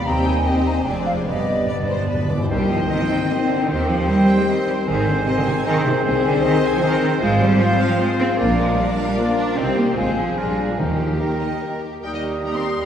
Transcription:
0.06 cello section D#2, double bass section D#2, french horn section G3 C4, viola section C4 D#4, violin section G4 C5 G5, flute section A#5
0.26 flute section G#5
0.45 french horn section G3 C4, viola section C4 D#4, violin section G4 C5 D#5, flute section G5
0.66 flute section A#5
0.77 flute section G#5
0.85 double bass section F1, cello section F2, french horn section G#3 C4, viola section C4 D4, violin section G#4 C5 D5, flute section G5
1.06 flute section F5
1.26 double bass section G1, timpani G2, cello section G2, french horn section G3 B3, viola section B3 D4, violin section G4 B4 D5, flute section D#5
1.36 timpani G2
1.43 timpani G2
1.51 timpani G2
1.58 timpani G2
1.67 timpani G2, french horn section G3, viola section B3 D4, violin section D5, flute section D5
1.75 timpani G2
1.83 timpani G2
1.88 timpani G2, violin section C5
1.98 timpani G2
2.07 timpani G2, violin section B4
2.14 timpani G2
2.23 timpani G2
2.30 timpani G2, violin section D5
2.38 timpani G2, violin section C5
2.50 double bass section C2, bassoon D#3, cello section G3, clarinet C4, french horn section C4 D#4, viola section C4, violin section G4 D#5, oboe C5, flute section G5
2.71 cello section F3, violin section C5
2.90 cello section D#3, bassoon D#3, clarinet C4, oboe C5, violin section D#5, flute section G5
3.01 cello section F3
3.10 cello section D#3, violin section G5
3.29 bassoon D#3, cello section G3, clarinet C4, oboe C5, violin section D#5, flute section G5
3.49 cello section D3, violin section C5
3.69 double bass section D#2, cello section D#3, bassoon D#3, clarinet C4, french horn section G4, violin section G4 C5, oboe C5, flute section G5
3.89 cello section F3, violin section C5
4.08 bassoon D#3, cello section G3, clarinet C4, oboe C5, violin section D#5, flute section G5
4.29 violin section G5
4.40 cello section G#3
4.48 bassoon D#3, cello section G3, clarinet C4, oboe C5, violin section D#5, flute section G5
4.68 cello section G3, violin section C5
4.87 double bass section G#1, cello section D#3, bassoon D#3, clarinet C4, french horn section C4 G#4, viola section C4, violin section G#4, oboe C5, flute section G#5
5.07 cello section D3, violin section C5
5.26 cello section C3, bassoon D#3, clarinet C4, oboe C5, violin section D#5, flute section G#5
5.38 cello section D3
5.47 cello section C3, violin section G#5
5.65 bassoon D#3, cello section D#3, clarinet C4, oboe C5, violin section D#5, flute section G#5
5.86 cello section C3, violin section C5
6.05 double bass section C2, cello section C3, bassoon D#3, clarinet C4, violin section G#4 C5, oboe C5, flute section G#5
6.26 cello section D3, violin section C5
6.44 bassoon D#3, cello section D#3, clarinet C4, oboe C5, violin section D#5, flute section G#5
6.65 violin section G#5
6.75 cello section F3
6.82 bassoon D#3, cello section D#3, clarinet C4, oboe C5, violin section D#5, flute section G#5
7.02 cello section D#3, violin section C5, flute section G5
7.21 double bass section G#1, bassoon F3, cello section G#3, french horn section C4 F4, viola section C4, clarinet F4, violin section F4, oboe C5, flute section F5
7.42 cello section G3, violin section G#4
7.61 cello section F3, bassoon F3, clarinet F4, oboe C5, violin section C5, flute section F5
7.72 cello section G3
7.82 cello section F3, violin section F5
7.99 bassoon F3, cello section G#3, clarinet F4, oboe C5, violin section C5, flute section F5
8.20 cello section C4, violin section G#4
8.38 double bass section A#1, bassoon F3, cello section A#3, french horn section D4, viola section D4, clarinet F4, violin section F4 A#4, oboe D5, flute section F5
8.59 cello section G#3, violin section A#4
8.78 cello section G3, violin section D5
8.89 cello section G#3
8.99 cello section G3, violin section F5
9.17 bassoon F3, cello section A#3, clarinet F4, oboe D5, violin section D5, flute section F5
9.37 cello section D4, violin section A#4
9.57 double bass section C2, bassoon D#3, cello section C4, viola section C4, clarinet C4, violin section D#4 G4, french horn section D#4 G4, oboe C5, flute section G5
9.77 cello section A#3, violin section G4
9.96 double bass section G#1, bassoon F3, cello section G#3, clarinet C4, french horn section F4 G#4, violin section F4 G#4, oboe C5, flute section G#5
10.17 cello section F3, violin section G#4
10.36 double bass section A#1, bassoon F3, cello section G3, french horn section D4, clarinet D4, viola section D4, violin section F4, oboe A#4, flute section G#5
10.58 violin section G#4
10.70 cello section F3
10.77 double bass section D#2, bassoon D#3, timpani D#3, cello section F3, viola section A#3, violin section D#4 G4, french horn section D#4 G4, clarinet D#4, oboe A#4, flute section G5
10.99 violin section G4
11.19 bassoon D#3, cello section D#3, clarinet D#4, violin section A#4, oboe A#4, flute section G5
11.41 violin section D#5
11.61 violin section A#4
11.82 violin section G4
12.03 double bass section D#2, cello section G3, bassoon G3, french horn section A#3 G4, viola section A#3 D#4, clarinet D#4, violin section G4 A#4 G5, oboe A#4, flute section D#6
12.14 cello section D#3, violin section D#5
12.43 cello section A#3, viola section A#3 D#4, violin section G4 A#4 A#5
12.54 cello section C4, violin section C6

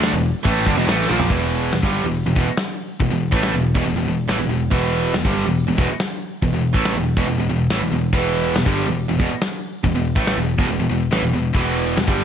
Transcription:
Already playing: picked electric bass D2, distorted electric guitar D3 A3 D4
0.03 snare, open hi-hat
0.13 picked electric bass E1, distorted electric guitar E2 B2
0.45 picked electric bass A1, distorted electric guitar A2 E3 A3, kick, open hi-hat
0.67 picked electric bass G1, distorted electric guitar G2 D3, kick
0.76 picked electric bass E1, distorted electric guitar E2 B2
0.87 picked electric bass A1, distorted electric guitar A2 E3 A3, snare, open hi-hat
1.08 picked electric bass A#1, distorted electric guitar A#2 F3 A#3, snare
1.20 floor tom
1.29 picked electric bass E1, distorted electric guitar E2 B2 E3, kick, open hi-hat
1.72 picked electric bass E1, distorted electric guitar E2 B2, snare, open hi-hat
1.82 picked electric bass G1, distorted electric guitar G2 D3 G3, kick
2.04 picked electric bass E1, distorted electric guitar E2 B2
2.15 open hi-hat
2.26 picked electric bass E1, distorted electric guitar E2 B2
2.36 picked electric bass E1, distorted electric guitar E2 B2, kick
2.57 snare, open hi-hat
3.00 picked electric bass E1, distorted electric guitar E2 B2, kick, open hi-hat
3.11 picked electric bass E1, distorted electric guitar E2 B2
3.32 picked electric bass A1, distorted electric guitar A2 E3 A3, kick
3.43 snare, open hi-hat
3.54 picked electric bass E1, distorted electric guitar E2 B2
3.75 picked electric bass E1, distorted electric guitar E2 B2, kick
3.86 picked electric bass E1, distorted electric guitar E2 B2, open hi-hat
3.96 picked electric bass E1, distorted electric guitar E2 B2
4.07 picked electric bass E1, distorted electric guitar E2 B2
4.28 picked electric bass A1, distorted electric guitar A2 E3, snare, open hi-hat
4.39 picked electric bass E1, distorted electric guitar E2 B2
4.49 picked electric bass E1, distorted electric guitar E2 B2
4.71 picked electric bass E1, distorted electric guitar E2 B2 E3, kick, open hi-hat
5.14 picked electric bass E1, distorted electric guitar E2 B2, snare, open hi-hat
5.25 picked electric bass G1, distorted electric guitar G2 D3 G3, kick
5.47 picked electric bass E1, distorted electric guitar E2 B2
5.57 open hi-hat
5.68 picked electric bass E1, distorted electric guitar E2 B2
5.78 picked electric bass E1, distorted electric guitar E2 B2, kick
5.99 snare, open hi-hat
6.42 picked electric bass E1, distorted electric guitar E2 B2, kick, open hi-hat
6.52 picked electric bass E1, distorted electric guitar E2 B2
6.74 picked electric bass A1, distorted electric guitar A2 E3 A3, kick
6.85 snare, open hi-hat
6.95 picked electric bass E1, distorted electric guitar E2 B2
7.17 picked electric bass E1, distorted electric guitar E2 B2, kick
7.28 picked electric bass E1, distorted electric guitar E2 B2, open hi-hat
7.38 picked electric bass E1, distorted electric guitar E2 B2
7.49 picked electric bass E1, distorted electric guitar E2 B2
7.70 picked electric bass A1, distorted electric guitar A2 E3, snare, open hi-hat
7.81 picked electric bass E1, distorted electric guitar E2 B2
7.91 picked electric bass E1, distorted electric guitar E2 B2
8.13 picked electric bass E1, distorted electric guitar E2 B2 E3, kick, open hi-hat
8.55 picked electric bass E1, distorted electric guitar E2 B2, snare, open hi-hat
8.65 picked electric bass G1, distorted electric guitar G2 D3 G3, kick
8.88 picked electric bass E1, distorted electric guitar E2 B2
8.99 open hi-hat
9.09 picked electric bass E1, distorted electric guitar E2 B2
9.20 picked electric bass E1, distorted electric guitar E2 B2, kick
9.41 snare, open hi-hat
9.84 picked electric bass E1, distorted electric guitar E2 B2, kick, open hi-hat
9.95 picked electric bass E1, distorted electric guitar E2 B2
10.16 picked electric bass A1, distorted electric guitar A2 E3 A3, kick
10.27 snare, open hi-hat
10.37 picked electric bass E1, distorted electric guitar E2 B2
10.58 picked electric bass E1, distorted electric guitar E2 B2, kick
10.69 picked electric bass E1, distorted electric guitar E2 B2, open hi-hat
10.79 picked electric bass E1, distorted electric guitar E2 B2
10.89 picked electric bass E1, distorted electric guitar E2 B2
11.11 picked electric bass A1, distorted electric guitar A2 E3, snare, open hi-hat
11.21 picked electric bass E1, distorted electric guitar E2 B2
11.33 picked electric bass E1, distorted electric guitar E2 B2
11.53 picked electric bass E1, distorted electric guitar E2 B2 E3, kick, open hi-hat
11.97 picked electric bass E1, distorted electric guitar E2 B2, snare, open hi-hat
12.07 picked electric bass G1, distorted electric guitar G2 D3 G3, kick

